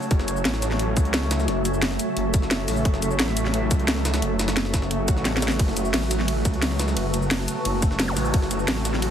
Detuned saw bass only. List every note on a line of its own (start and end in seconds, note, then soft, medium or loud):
0.11 0.44 F#1 loud
0.45 0.95 A1 loud
0.97 1.47 C#2 loud
1.48 1.98 F#1 loud
2.17 2.67 F#1 loud
2.68 2.84 A1 loud
2.85 3.18 F#1 loud
3.19 3.70 A1 loud
3.71 4.21 C#2 loud
4.22 4.72 F#1 loud
4.74 5.07 F#1 loud
5.08 5.58 A1 loud
5.59 5.92 F#1 loud
5.94 6.44 A1 loud
6.45 6.95 C#2 loud
6.97 7.47 F#1 loud
7.65 8.15 F#1 loud
8.17 8.32 A1 loud
8.34 8.67 F#1 loud
8.68 9.10 A1 loud